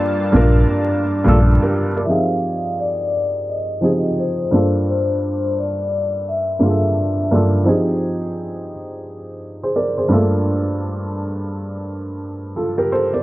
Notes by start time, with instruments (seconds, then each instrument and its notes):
Already playing: felt piano G2 A#3 D4 F4 A4 C5 D#5, analog synth pad G3 A#3 F4 A5, vibraphone D5
0.32 sub bass A#1, felt piano G2 A#3 D4 F4
0.36 felt piano A#4
1.24 sub bass A#1, felt piano G2 A#3 D4 F4
1.28 felt piano A4
1.40 felt piano F4 A4
1.62 felt piano G4 A#4
1.97 felt piano A#4 D5
2.05 felt piano F3 C4 D#4, vibraphone E5
2.10 felt piano G4 G#4, vibraphone F5
2.80 vibraphone D5
3.49 vibraphone D#5
3.81 felt piano F3 C4 D#4 G4
3.85 felt piano G#4
4.20 vibraphone C5
4.51 felt piano G2 A#3 D4 F4
4.56 felt piano A4
4.90 vibraphone C5
5.59 vibraphone D5
6.28 vibraphone E5
6.59 felt piano G2 A#3 D4 F4
6.64 felt piano G#4
6.70 felt piano A4
7.31 felt piano G2 A#3 D4 F4 A4
7.64 felt piano F3 C4 D#4 G4 G#4
9.63 felt piano G#4 C5
9.76 felt piano A#4 D5
9.98 felt piano G#4 C5
10.09 felt piano G2 A3 D4 F4
10.13 felt piano A#3 A4
12.56 felt piano F4 A4
12.78 felt piano G4 A#4
12.92 felt piano A4 C5
13.13 felt piano A#4 D5